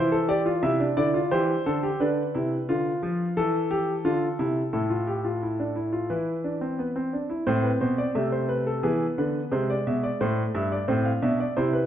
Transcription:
grand piano
Already playing: E3 E4 C5
0.12 A4
0.29 G4 D5
0.46 F4
0.63 C3 E4 E5
0.80 D4
0.97 D3 E4 D5
1.14 F4
1.31 E3 G4 C5
1.66 D3 A4
1.83 G4
2.00 D3 D4 B4
2.35 C3 E4
2.69 D3 F4
3.03 F3
3.37 E3 A4
3.71 G4
4.05 D3 F4
4.39 C3 E4
4.73 A2 E4 A4
4.90 F4
5.07 G4
5.25 F4
5.43 E4
5.59 D4
5.76 E4
5.92 F4
6.10 E3 E4 B4
6.44 D4
6.61 C4
6.79 B3
6.96 C4
7.13 D4
7.30 E4
7.47 A2 C4 C5
7.64 B4
7.81 B2 C5
7.98 D5
8.15 C3 A3 E5
8.32 C5
8.49 B4
8.67 A4
8.83 E3 B3 G#4
9.18 D3 B4
9.52 C3 G#3 C5
9.70 D5
9.87 B2 E5
10.03 D5
10.21 A2 A3 C5
10.55 G2 E5
10.72 D5
10.88 A2 C4 C5
11.05 F5
11.22 B2 D4 E5
11.40 D5
11.57 C3 E4 C5
11.73 B4

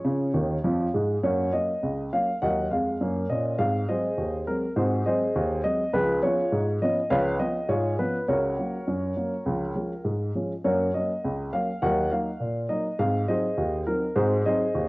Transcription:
upright piano
Already playing: G#4 C#5
0.05 C#3 F4
0.34 D#2 D#3
0.64 F2 F3
0.94 G#2 G#3
1.23 F#2 A#3 F#4 A#4 C#5
1.53 F#3 A#3 C#4 D#5
1.83 C#2
2.13 F#3 A#3 C#4 F5
2.42 D#2 F#3 A#4 D#5 F#5
2.71 F2 G#3 F5
3.01 F#2 A#3
3.30 A#2 C#4 D#5
3.59 G#2 C4 F5
3.89 F#3 G#3 C4 G#4 C5 D#5
4.17 D#2
4.47 F#3 G#3 C4 A#4
4.76 G#2 C4 F#4 G#4 C5
5.06 F#3 G#3 C4 G#4 C5 D#5
5.35 D#2
5.64 F#3 G#3 C4 D#5
5.93 C#2 F3 F4 G#4 B4
6.22 F3 B3 C#4 F4 G#4 C#5
6.52 G#2
6.82 F3 B3 C#4 D#5
7.10 C#2 F3 B4 C#5 F5
7.39 F3 B3 C#4 D#5
7.68 G#2 F4 G#4 C#5
7.99 F3 B3 C#4 B4
8.28 C#2 F#4 A#4 C#5
8.58 F#3 A#3 C#4
8.87 F#2
9.17 F#3 A#3 C#4
9.46 C#2 F3
9.76 F3 G#3 C#4
10.05 G#2
10.35 F3 G#3 C#4
10.64 F#2 A#3 F#4 A#4 C#5
10.94 F#3 A#3 C#4 D#5
11.25 C#2
11.53 F#3 A#3 C#4 F5
11.82 D#2 F#3 A#4 D#5 F#5
12.12 F#3 A#3 D#4 F5
12.40 A#2
12.69 F#3 A#3 D#4 D#5
12.99 G#2 C4 F5
13.28 F#3 C4 D#4 G#4 C5 D#5
13.58 D#2
13.87 F#3 C4 D#4 A#4
14.16 G#2 C4 F#4 G#4 C5
14.46 F#3 C4 D#4 G#4 C5 D#5
14.75 D#2

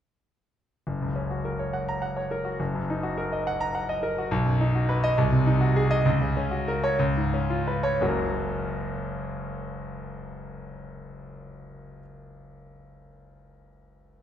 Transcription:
grand piano
0.87 F#1
1.02 C#2
1.16 C#4
1.31 F#4
1.45 A#4
1.59 C#5
1.73 F#5
1.88 A#5
2.02 F#5
2.17 C#5
2.31 A#4
2.45 F#4
2.60 F#1
2.75 F#2
2.90 D#4
3.03 F#4
3.18 A#4
3.32 D#5
3.47 F#5
3.60 A#5
3.75 F#5
3.89 D#5
4.03 A#4
4.18 F#4
4.31 B1
4.45 F#2
4.61 D#4
4.75 F#4
4.89 B4
5.04 D#5
5.18 C2
5.32 C3
5.47 D#4
5.61 F#4
5.76 G#4
5.91 D#5
6.05 C#2
6.21 C#3
6.37 C#4
6.51 F#4
6.68 A#4
6.84 C#5
6.99 C#2
7.17 G#2
7.34 C#4
7.50 F4
7.67 B4
7.83 C#5
8.01 F#1 C#2 F#3 A#3 C#4 F#4

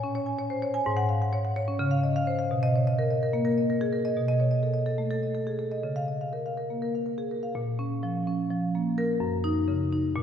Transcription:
marimba
Already playing: A#2 C#5
0.04 C#4
0.15 C#5
0.26 G#5
0.39 C#5
0.50 C5
0.62 C#5
0.74 G#5
0.86 G#2
0.97 F#5
1.09 F5
1.22 F#5
1.33 C#5
1.45 F#5
1.56 C#5
1.68 C#4
1.79 C#3
1.91 F5
2.03 D#5
2.16 F5
2.27 C5
2.39 F5
2.51 B2
2.63 D#5
2.76 C#5
2.87 D#5
2.99 A#4
3.11 D#5
3.23 A#4
3.33 A#3
3.45 A#4
3.58 D#5
3.70 A#4
3.81 G#4
3.93 A#4
4.05 D#5
4.17 B2
4.28 D#5
4.40 C#5
4.51 D#5
4.63 A4
4.74 D#5
4.86 A4
4.98 A3
5.11 A4
5.23 D#5
5.35 A4
5.47 G#4
5.59 A4
5.72 D#5
5.83 C#3
5.96 F5
6.08 D#5
6.21 F5
6.33 A#4
6.46 F5
6.58 A#4
6.70 A#3
6.82 A#4
6.95 F5
7.06 A#4
7.18 G#4
7.31 A#4
7.43 F5
7.55 A#2
7.79 C#4
8.03 F3
8.27 C#4
8.50 F3
8.75 A#3
8.98 A#4
9.20 F#2
9.44 D#4
9.68 C#3
9.92 D#4
10.16 A#2

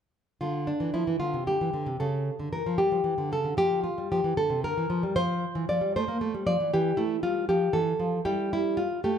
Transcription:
nylon-string guitar
0.41 D3 F4
0.67 D4
0.80 E3
0.94 F3 E4
1.07 E3
1.20 D3 F4
1.34 C3
1.47 D3 G4
1.61 E3
1.73 D3
1.86 C3
2.00 C#3 A4
2.40 D3
2.52 E3 A#4
2.66 F3
2.78 G3 G4
2.92 F3
3.04 E3
3.18 D3
3.32 C#3 A4
3.44 D3
3.57 F3 G4
3.84 F4
3.98 G3
4.12 F3 G4
4.24 E3
4.37 D3 A4
4.50 C3
4.64 D3 A#4
4.77 E3
4.90 F3
5.03 G3
5.16 F3 F4 C5
5.55 E3
5.69 F3 D5
5.81 G3
5.96 A3 C5
6.08 A#3
6.21 A3
6.34 G3
6.46 F3 D5
6.60 E3
6.74 E3 G4
6.97 A3 E4
7.23 G3 F4
7.49 F3 G4
7.73 E3 A4
8.00 F3
8.25 G3 E4 G4
8.53 E4
8.77 F4
9.04 A3 G4

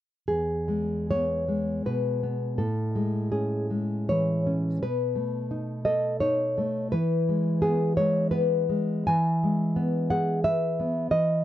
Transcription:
nylon-string guitar
0.28 E2 G#4
0.68 G#3
1.11 B3 C#5
1.48 G#3
1.86 B2 B4
2.23 B3
2.58 A2 A4
2.95 G#3
3.31 C#4 G#4
3.70 G#3
4.09 E3 C#5
4.47 C#4
4.83 B2 B4
5.15 A3
5.51 D#4
5.85 A4 D#5
6.20 D#4 C#5
6.58 A3
6.92 E3 B4
7.29 G#3
7.62 B3 G#4
7.97 G#3 C#5
8.31 B3 B4
8.69 G#3
9.07 E3 G#5
9.43 G#3
9.76 B3
10.10 G#4 F#5
10.44 B4 E5
10.80 B3
11.11 E3 D#5

